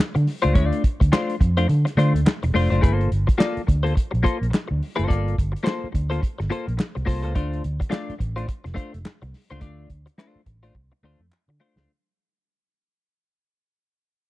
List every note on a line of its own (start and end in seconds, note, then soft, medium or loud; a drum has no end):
0.15 0.26 D3 loud
0.15 muted clean electric guitar stroke soft
0.15 closed hi-hat medium
0.27 snare soft
0.27 open hi-hat medium
0.42 0.55 C#2 medium
0.42 0.53 A3 medium
0.42 0.53 D4 medium
0.42 0.54 F4 medium
0.42 0.55 C5 loud
0.42 closed hi-hat medium
0.54 0.70 D2 loud
0.54 0.65 G#3 medium
0.54 0.65 C#4 medium
0.54 0.66 E4 medium
0.54 0.66 C#5 medium
0.54 kick loud
0.54 closed hi-hat medium
0.65 0.81 A3 medium
0.65 0.82 D4 medium
0.65 0.82 F4 medium
0.65 0.82 D5 medium
0.73 closed hi-hat medium
0.84 kick medium
0.84 closed hi-hat medium
1.00 1.11 D2 medium
1.00 muted clean electric guitar stroke soft
1.00 kick medium
1.00 closed hi-hat medium
1.12 1.34 A3 medium
1.12 1.34 D4 medium
1.12 1.34 F4 medium
1.12 1.35 C5 medium
1.12 snare loud
1.12 clap medium
1.30 closed hi-hat medium
1.40 1.65 F2 loud
1.40 muted clean electric guitar stroke soft
1.40 kick medium
1.40 closed hi-hat medium
1.57 1.67 A3 medium
1.57 1.67 D4 medium
1.57 1.67 F4 medium
1.57 1.68 C5 medium
1.57 closed hi-hat medium
1.68 1.84 D3 loud
1.68 muted clean electric guitar stroke soft
1.68 closed hi-hat medium
1.85 muted clean electric guitar stroke soft
1.85 snare soft
1.85 closed hi-hat medium
1.97 2.12 D3 medium
1.97 2.19 A3 medium
1.97 2.14 D4 medium
1.97 2.14 F4 medium
1.97 2.13 C5 medium
1.97 closed hi-hat medium
2.14 2.24 D2 medium
2.14 muted clean electric guitar stroke soft
2.14 closed hi-hat medium
2.26 muted clean electric guitar stroke soft
2.26 snare loud
2.26 clap loud
2.43 2.53 E1 medium
2.43 muted clean electric guitar stroke soft
2.43 closed hi-hat medium
2.54 2.69 F1 medium
2.54 2.71 A3 medium
2.54 2.71 D4 medium
2.54 2.70 F4 medium
2.54 2.69 C5 medium
2.54 snare soft
2.54 open hi-hat medium
2.70 2.81 F#1 medium
2.70 2.81 A3 medium
2.70 2.82 D4 medium
2.70 2.81 F4 medium
2.70 2.82 C5 medium
2.70 closed hi-hat soft
2.81 3.08 G1 loud
2.81 2.92 A3 medium
2.81 2.93 E4 medium
2.81 2.93 G#4 medium
2.81 2.94 B4 medium
2.81 kick loud
2.81 closed hi-hat medium
2.92 3.08 A#3 medium
2.92 3.09 F4 medium
2.92 3.09 A4 medium
2.92 3.09 C5 medium
3.01 closed hi-hat soft
3.11 3.26 G1 medium
3.11 closed hi-hat medium
3.27 muted clean electric guitar stroke soft
3.27 kick loud
3.27 closed hi-hat medium
3.38 3.61 A#3 medium
3.38 3.61 F4 medium
3.38 3.61 A4 medium
3.38 3.61 D5 medium
3.38 snare loud
3.38 clap medium
3.57 muted fingered electric bass stroke medium
3.57 closed hi-hat soft
3.67 3.93 D2 medium
3.67 muted clean electric guitar stroke soft
3.67 kick medium
3.67 closed hi-hat medium
3.83 3.93 A#3 soft
3.83 3.94 F4 medium
3.83 3.94 A4 medium
3.83 3.94 C5 medium
3.83 closed hi-hat medium
3.95 muted clean electric guitar stroke soft
3.95 kick medium
3.95 closed hi-hat medium
4.11 4.23 A#1 medium
4.11 muted clean electric guitar stroke soft
4.11 closed hi-hat soft
4.23 4.46 A#3 medium
4.23 4.39 F4 loud
4.23 4.38 A4 loud
4.23 4.38 C5 loud
4.23 kick medium
4.23 closed hi-hat medium
4.39 4.51 A#1 medium
4.39 muted clean electric guitar stroke soft
4.43 closed hi-hat medium
4.50 muted clean electric guitar stroke soft
4.50 clap medium
4.54 snare loud
4.68 4.80 D2 medium
4.68 muted clean electric guitar stroke soft
4.83 open hi-hat medium
4.96 5.08 F#1 loud
4.96 5.06 A#3 medium
4.96 5.06 F4 medium
4.96 5.07 A4 medium
4.96 5.08 C5 loud
4.96 closed hi-hat soft
5.07 5.34 G1 loud
5.07 5.35 A#3 medium
5.07 5.35 F4 medium
5.07 5.35 A4 loud
5.07 5.35 D5 loud
5.07 kick loud
5.07 closed hi-hat medium
5.28 closed hi-hat soft
5.38 5.53 G1 medium
5.38 kick medium
5.38 closed hi-hat medium
5.52 muted clean electric guitar stroke soft
5.56 closed hi-hat medium
5.63 5.86 A#3 medium
5.63 5.87 F4 medium
5.63 5.87 A4 medium
5.63 5.87 C5 loud
5.63 snare loud
5.63 clap medium
5.84 muted fingered electric bass stroke soft
5.92 6.19 D2 medium
5.92 muted clean electric guitar stroke soft
5.92 kick medium
5.92 closed hi-hat medium
6.10 6.20 A#3 medium
6.10 6.20 F4 medium
6.10 6.21 A4 medium
6.10 6.21 C5 medium
6.10 closed hi-hat medium
6.21 muted clean electric guitar stroke medium
6.21 kick medium
6.21 closed hi-hat medium
6.38 6.50 G1 medium
6.38 muted clean electric guitar stroke medium
6.38 snare soft
6.38 closed hi-hat soft
6.50 6.72 A#3 medium
6.50 6.67 F4 medium
6.50 6.66 A4 medium
6.50 6.66 C5 loud
6.50 closed hi-hat medium
6.67 6.77 A#1 medium
6.67 muted clean electric guitar stroke medium
6.67 closed hi-hat medium
6.77 muted clean electric guitar stroke soft
6.77 snare loud
6.77 clap medium
6.95 7.06 C2 medium
6.95 muted clean electric guitar stroke soft
6.95 closed hi-hat soft
7.05 7.24 C2 loud
7.05 7.23 A#3 medium
7.05 7.23 F4 medium
7.05 7.22 A4 medium
7.05 7.21 C5 medium
7.05 kick loud
7.05 snare soft
7.05 open hi-hat medium
7.22 7.36 C#2 loud
7.22 7.34 A#3 medium
7.22 7.34 F4 medium
7.22 7.35 A4 medium
7.22 7.35 C5 medium
7.22 closed hi-hat soft
7.35 7.60 D2 loud
7.35 7.62 A3 medium
7.35 7.62 D4 loud
7.35 7.62 F4 medium
7.35 7.62 C5 medium
7.35 kick loud
7.35 closed hi-hat medium
7.53 closed hi-hat soft
7.64 7.79 D2 loud
7.64 closed hi-hat medium
7.80 muted clean electric guitar stroke soft
7.80 kick medium
7.80 closed hi-hat medium
7.90 8.13 A3 medium
7.90 8.13 D4 medium
7.90 8.13 F4 medium
7.90 8.14 D5 loud
7.90 snare loud
7.90 clap medium
8.09 muted fingered electric bass stroke soft
8.09 closed hi-hat soft
8.19 8.45 A1 medium
8.19 muted clean electric guitar stroke soft
8.19 kick medium
8.19 closed hi-hat medium
8.36 8.46 A3 soft
8.36 8.47 D4 soft
8.36 8.47 F4 medium
8.36 8.48 C5 medium
8.36 closed hi-hat soft
8.47 muted clean electric guitar stroke soft
8.47 kick medium
8.47 closed hi-hat medium
8.64 8.75 F1 medium
8.64 muted clean electric guitar stroke soft
8.64 snare soft
8.64 closed hi-hat soft
8.74 8.97 A3 medium
8.74 8.93 D4 loud
8.74 8.93 F4 loud
8.74 8.92 C5 loud
8.74 kick medium
8.74 closed hi-hat medium
8.93 9.04 F1 medium
8.93 muted clean electric guitar stroke medium
8.93 closed hi-hat medium
9.05 muted clean electric guitar stroke soft
9.05 snare loud
9.05 clap loud
9.22 9.32 C2 medium
9.22 muted clean electric guitar stroke soft
9.22 closed hi-hat soft
9.34 snare soft
9.34 open hi-hat medium
9.50 9.61 C#2 medium
9.50 9.59 A3 medium
9.50 9.60 D4 medium
9.50 9.60 F4 medium
9.50 9.61 C5 medium
9.50 closed hi-hat soft
9.60 9.86 D2 loud
9.60 9.87 A3 medium
9.60 9.88 D4 medium
9.60 9.88 F4 medium
9.60 9.88 D5 medium
9.60 kick loud
9.60 closed hi-hat medium
9.90 10.05 D2 medium
9.90 kick medium
9.90 closed hi-hat medium
10.06 muted clean electric guitar stroke soft
10.06 closed hi-hat medium
10.18 10.40 A3 medium
10.18 10.40 D4 medium
10.18 10.40 F4 medium
10.18 10.40 C5 medium
10.18 snare loud
10.18 clap loud
10.36 muted fingered electric bass stroke medium
10.46 10.71 A1 medium
10.46 muted clean electric guitar stroke soft
10.46 kick medium
10.46 closed hi-hat medium
10.63 10.73 A3 soft
10.63 10.74 D4 medium
10.63 10.75 F4 medium
10.63 10.75 C5 medium
10.63 closed hi-hat medium
10.75 10.90 C2 medium
10.75 muted clean electric guitar stroke soft
10.75 kick medium
10.92 muted clean electric guitar stroke soft
11.03 11.18 D2 medium
11.03 11.25 A3 medium
11.03 11.21 D4 medium
11.03 11.21 F4 medium
11.03 11.21 C5 loud
11.20 11.29 F2 medium
11.20 muted clean electric guitar stroke soft
11.32 muted clean electric guitar stroke soft
11.32 clap loud
11.48 11.58 D3 loud
11.48 muted clean electric guitar stroke soft
11.60 11.77 A3 medium
11.60 11.77 D4 medium
11.60 11.76 F4 medium
11.60 11.76 C5 medium
11.76 11.86 C#2 medium
11.76 11.91 A3 medium
11.76 11.90 D4 medium
11.76 11.90 F4 medium
11.76 11.90 C5 medium
11.76 snare loud